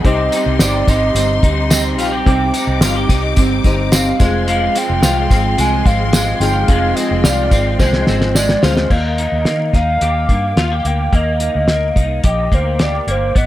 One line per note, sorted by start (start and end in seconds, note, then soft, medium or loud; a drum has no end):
0.00 0.32 C3 medium
0.00 2.22 C4 medium
0.00 0.33 D#4 medium
0.00 4.15 D#4 medium
0.04 0.28 C2 loud
0.04 0.32 G3 medium
0.04 0.33 C4 medium
0.04 1.15 C4 medium
0.04 2.22 D#4 medium
0.04 0.31 D#4 medium
0.04 4.16 G4 medium
0.04 2.23 G4 medium
0.04 0.59 G4 medium
0.04 2.23 C5 medium
0.04 0.56 D#5 medium
0.04 2.24 C6 medium
0.04 kick loud
0.04 closed hi-hat medium
0.32 0.60 G3 soft
0.32 0.60 C4 medium
0.32 0.60 D#4 medium
0.32 0.87 D#4 medium
0.32 closed hi-hat medium
0.32 tambourine medium
0.46 0.58 C2 medium
0.59 0.83 G1 medium
0.59 0.88 C3 medium
0.59 0.88 G3 medium
0.59 0.88 C4 loud
0.59 0.87 D#4 loud
0.59 1.98 G4 medium
0.59 0.90 D5 medium
0.59 snare loud
0.59 closed hi-hat medium
0.59 tambourine loud
0.87 1.11 G#1 medium
0.87 1.16 G3 soft
0.87 1.16 C4 soft
0.87 1.16 D#4 medium
0.87 1.42 D#4 medium
0.87 1.70 D#5 loud
0.87 kick medium
0.87 snare soft
0.87 closed hi-hat medium
0.87 tambourine medium
1.15 1.38 G1 loud
1.15 1.44 C3 medium
1.15 1.44 G3 medium
1.15 1.70 C4 medium
1.15 1.44 C4 medium
1.15 closed hi-hat medium
1.15 tambourine medium
1.19 1.42 D#4 medium
1.43 1.98 D2 medium
1.43 1.71 G3 soft
1.43 1.72 C4 soft
1.43 1.71 D#4 medium
1.43 2.52 D#4 medium
1.43 kick loud
1.43 closed hi-hat medium
1.70 2.26 C3 medium
1.70 2.26 G3 medium
1.70 2.26 C4 medium
1.70 2.28 C4 medium
1.70 2.27 D#4 medium
1.70 1.83 D#5 medium
1.70 snare loud
1.70 closed hi-hat medium
1.70 tambourine loud
1.98 2.22 A#1 medium
1.98 2.12 F4 medium
1.98 2.79 G5 loud
1.98 closed hi-hat medium
1.98 tambourine medium
2.12 2.26 G4 medium
2.26 2.50 C2 loud
2.26 2.54 C3 medium
2.26 2.54 G3 medium
2.26 3.62 C4 medium
2.26 3.38 C4 medium
2.26 2.54 C4 medium
2.26 3.62 D#4 medium
2.26 2.52 D#4 medium
2.26 3.62 G4 medium
2.26 2.81 G4 medium
2.26 3.63 C5 medium
2.26 4.18 D6 medium
2.26 kick loud
2.26 closed hi-hat medium
2.54 2.81 G3 soft
2.54 2.81 C4 medium
2.54 3.08 D#4 medium
2.54 2.81 D#4 medium
2.54 closed hi-hat medium
2.54 tambourine medium
2.67 2.79 C2 medium
2.81 3.05 G1 medium
2.81 3.09 C3 medium
2.81 3.10 G3 loud
2.81 3.09 C4 loud
2.81 3.08 D#4 loud
2.81 2.96 F4 medium
2.81 snare loud
2.81 closed hi-hat medium
2.81 tambourine loud
2.96 4.26 G4 medium
3.09 3.33 C2 medium
3.09 3.36 G3 soft
3.09 3.37 C4 medium
3.09 3.37 D#4 medium
3.09 3.64 D#4 medium
3.09 kick medium
3.09 closed hi-hat medium
3.09 tambourine soft
3.35 3.61 G1 loud
3.35 3.64 C3 medium
3.35 3.65 G3 medium
3.35 3.92 C4 medium
3.35 3.65 C4 medium
3.35 3.63 D#4 medium
3.35 kick loud
3.35 closed hi-hat medium
3.35 tambourine medium
3.64 4.11 G1 medium
3.64 3.91 G3 medium
3.64 4.18 C4 medium
3.64 3.92 C4 medium
3.64 3.92 D#4 medium
3.64 4.26 D#4 medium
3.64 4.21 D#4 medium
3.64 4.21 G4 medium
3.64 4.20 C5 medium
3.64 kick medium
3.64 closed hi-hat medium
3.64 tambourine soft
3.92 4.20 C3 medium
3.92 4.20 G3 medium
3.92 4.19 C4 medium
3.92 4.20 D#4 loud
3.92 4.45 F5 loud
3.92 snare loud
3.92 closed hi-hat medium
3.92 tambourine loud
4.19 4.67 F1 loud
4.19 4.77 F2 medium
4.19 4.76 C3 medium
4.19 4.76 F3 medium
4.19 4.46 G#3 medium
4.19 4.75 G#3 medium
4.19 6.37 C4 medium
4.19 4.74 C4 medium
4.19 6.37 F4 medium
4.19 8.86 G#4 medium
4.19 6.38 G#4 medium
4.19 6.38 C5 medium
4.19 6.39 F5 medium
4.19 8.86 C6 medium
4.19 kick loud
4.19 closed hi-hat medium
4.19 tambourine medium
4.47 5.57 G#3 medium
4.47 5.01 F4 medium
4.47 4.79 F5 loud
4.47 closed hi-hat medium
4.75 5.01 F3 soft
4.75 5.02 G#3 soft
4.75 5.02 C4 medium
4.75 5.29 C4 medium
4.75 5.60 G5 loud
4.75 closed hi-hat medium
4.75 tambourine medium
4.90 5.01 F1 medium
5.01 5.26 C2 medium
5.01 5.30 F2 medium
5.01 5.30 C3 medium
5.01 5.30 F3 medium
5.01 5.30 G#3 medium
5.01 5.29 C4 medium
5.01 6.40 F4 medium
5.01 snare loud
5.01 closed hi-hat medium
5.01 tambourine loud
5.30 5.54 G#1 medium
5.30 5.57 F3 soft
5.30 5.58 G#3 soft
5.30 5.58 C4 medium
5.30 5.85 C4 medium
5.30 kick medium
5.30 snare soft
5.30 closed hi-hat medium
5.30 tambourine medium
5.57 5.82 C2 medium
5.57 5.85 C3 medium
5.57 5.86 F3 medium
5.57 6.13 G#3 medium
5.57 5.84 G#3 medium
5.57 5.83 C4 medium
5.57 5.88 G#5 loud
5.57 closed hi-hat medium
5.57 tambourine medium
5.85 6.33 G#1 medium
5.85 6.12 F3 soft
5.85 6.12 G#3 soft
5.85 6.13 C4 medium
5.85 6.96 C4 medium
5.85 6.40 F5 loud
5.85 kick loud
5.85 closed hi-hat medium
5.85 tambourine soft
6.12 6.67 F2 medium
6.12 6.67 C3 medium
6.12 6.68 F3 medium
6.12 6.69 G#3 medium
6.12 6.68 G#3 medium
6.12 6.69 C4 medium
6.12 snare loud
6.12 closed hi-hat medium
6.12 tambourine loud
6.40 6.64 G1 medium
6.40 8.59 C4 medium
6.40 8.59 D#4 medium
6.40 6.68 F4 medium
6.40 8.59 F4 medium
6.40 8.59 G#4 medium
6.40 6.70 G5 loud
6.40 8.88 G5 medium
6.40 closed hi-hat medium
6.40 tambourine medium
6.68 6.92 F1 loud
6.68 6.96 F2 medium
6.68 6.96 C3 medium
6.68 6.97 F3 medium
6.68 7.78 G#3 medium
6.68 6.96 G#3 medium
6.68 6.94 C4 medium
6.68 7.23 F4 medium
6.68 6.97 F5 loud
6.68 kick loud
6.68 closed hi-hat medium
6.95 7.24 F3 soft
6.95 7.23 G#3 medium
6.95 7.24 C4 medium
6.95 7.50 C4 medium
6.95 7.25 D#5 loud
6.95 closed hi-hat medium
6.95 tambourine medium
7.11 7.22 F1 medium
7.23 7.48 C2 medium
7.23 7.52 F2 medium
7.23 7.52 C3 medium
7.23 7.52 F3 medium
7.23 7.51 G#3 medium
7.23 7.50 C4 loud
7.23 8.62 F4 medium
7.23 7.79 D5 loud
7.23 snare loud
7.23 closed hi-hat medium
7.23 tambourine loud
7.51 7.75 G#1 medium
7.51 7.79 F3 soft
7.51 7.79 G#3 medium
7.51 7.79 C4 medium
7.51 8.06 C4 medium
7.51 kick medium
7.51 closed hi-hat medium
7.51 tambourine soft
7.79 8.03 C2 medium
7.79 8.07 C3 medium
7.79 8.08 F3 medium
7.79 8.34 G#3 medium
7.79 8.07 G#3 medium
7.79 8.06 C4 medium
7.79 8.06 C5 medium
7.79 kick loud
7.79 snare medium
7.79 tambourine soft
7.93 snare medium
8.07 8.55 G#1 medium
8.07 8.34 F3 soft
8.07 8.35 G#3 soft
8.07 8.35 C4 soft
8.07 8.96 C4 medium
8.07 8.37 C5 medium
8.07 snare medium
8.07 tambourine soft
8.21 snare medium
8.35 8.91 F2 medium
8.35 8.91 C3 medium
8.35 8.91 F3 medium
8.35 8.90 G#3 medium
8.35 8.91 G#3 medium
8.35 8.92 C4 medium
8.35 8.65 D5 loud
8.35 snare medium
8.35 tambourine loud
8.49 snare medium
8.63 8.87 D2 medium
8.63 8.91 C4 soft
8.63 8.91 F4 soft
8.63 8.96 F4 medium
8.63 8.91 G#4 soft
8.63 8.93 C5 medium
8.63 8.91 D#5 medium
8.63 snare loud
8.63 tambourine medium
8.77 snare medium
8.90 9.26 D#2 medium
8.90 9.45 A#3 medium
8.90 9.74 D#5 loud
8.90 kick medium
8.90 crash medium
9.18 9.73 D#4 medium
9.18 closed hi-hat medium
9.32 9.44 D#2 medium
9.45 9.70 D#3 medium
9.45 10.29 A#3 medium
9.45 snare medium
9.45 closed hi-hat medium
9.73 9.97 D#2 medium
9.73 11.40 D#4 medium
9.73 10.88 F5 loud
9.73 kick medium
9.73 snare soft
9.73 closed hi-hat medium
10.01 10.25 D#2 medium
10.01 10.57 G4 medium
10.01 closed hi-hat medium
10.29 10.53 G2 medium
10.29 10.84 A#3 medium
10.29 kick medium
10.29 closed hi-hat medium
10.56 10.80 D#2 medium
10.56 10.72 F4 medium
10.56 snare loud
10.56 closed hi-hat medium
10.72 12.23 G4 medium
10.85 11.09 D2 medium
10.85 11.12 A#3 medium
10.85 11.16 G5 loud
10.85 closed hi-hat medium
11.12 11.48 D#2 medium
11.12 11.67 A#3 medium
11.12 11.41 D#5 loud
11.12 kick loud
11.12 closed hi-hat medium
11.40 11.96 D#4 medium
11.40 12.20 D#5 loud
11.40 closed hi-hat medium
11.55 11.90 D2 medium
11.68 12.51 A#3 medium
11.68 snare loud
11.68 closed hi-hat medium
11.96 12.19 C2 medium
11.96 13.46 D#4 medium
11.96 kick medium
11.96 closed hi-hat medium
12.24 12.48 A#1 medium
12.24 12.79 G4 medium
12.24 12.56 D#5 medium
12.24 kick medium
12.24 closed hi-hat medium
12.51 12.99 D2 medium
12.51 13.06 A#3 medium
12.51 12.84 C5 medium
12.51 kick medium
12.51 closed hi-hat medium
12.79 13.41 G4 medium
12.79 13.12 D5 medium
12.79 snare loud
12.79 closed hi-hat medium
13.07 13.31 G1 medium
13.07 13.35 A#3 medium
13.07 13.37 C5 medium
13.07 closed hi-hat medium
13.35 13.46 G#1 medium
13.35 13.46 B3 medium
13.35 13.46 D#5 loud
13.35 kick medium
13.35 closed hi-hat medium